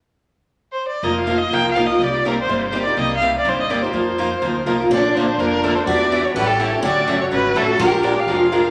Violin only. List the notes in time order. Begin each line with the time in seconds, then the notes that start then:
0.72 C5
0.88 D5
1.03 D#5
1.20 F5
1.38 D#5
1.54 G5
1.72 F5
1.86 D#5
2.03 D5
2.28 A#4
2.40 C5
2.68 C5
2.83 D5
2.99 D#5
3.17 F5
3.38 D5
3.48 C5
3.61 D#5
3.70 D5
3.82 C5
4.92 D5
5.15 C5
5.40 A#4
5.75 C5
5.86 D5
6.24 C#5
6.34 B4
6.47 A4
6.82 D5
7.21 C#5
7.33 B4
7.57 A4
7.81 A#4
8.04 D5
8.19 F5